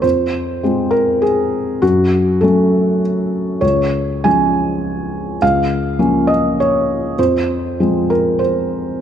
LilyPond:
<<
  \new Staff \with { instrumentName = "Felt piano" } { \time 3/4 \key f \phrygian \tempo 4 = 100 c''4. bes'8 aes'4 | ges'4 a'4 r4 | des''4 aes''2 | f''4. ees''8 des''4 |
c''4. bes'8 c''4 | }
  \new Staff \with { instrumentName = "Felt piano" } { \clef bass \time 3/4 \key f \phrygian f,4 <aes c' f'>2 | ges,4 <ges a des'>2 | des,4 <f aes des'>2 | des,4 <f bes des'>2 |
f,4 <f aes c'>2 | }
>>